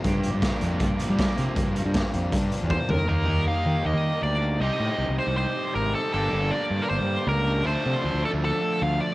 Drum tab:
HH |xxxxxxxx|xxxxxx--|--------|--------|
SD |--o---o-|--o-----|--------|--------|
FT |--------|-------o|--------|--------|
BD |o-o-o-o-|o-o-o-o-|--------|--------|

HH |--------|--------|
SD |--------|--------|
FT |--------|--------|
BD |--------|--------|